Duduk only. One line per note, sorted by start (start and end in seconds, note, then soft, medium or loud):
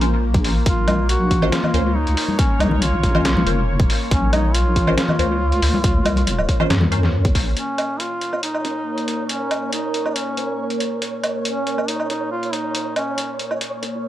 0.66 1.06 F4 loud
1.10 1.54 F#4 loud
1.53 1.98 F4 loud
1.96 2.40 D#4 loud
2.39 2.62 C#4 loud
2.61 2.81 D#4 loud
2.82 3.86 F4 loud
4.12 4.32 C#4 loud
4.33 4.56 D#4 loud
4.55 4.97 F4 loud
4.98 7.10 F4 loud
7.57 8.01 C#4 medium
8.00 8.43 F4 loud
8.43 9.25 D#4 loud
9.29 9.69 C#4 medium
9.73 10.17 D#4 medium
10.16 10.80 C#4 medium
11.45 11.90 C#4 medium
11.88 12.10 D#4 loud
12.10 12.30 D#4 medium
12.32 12.55 F4 loud
12.53 12.96 D#4 loud
12.97 13.37 C#4 medium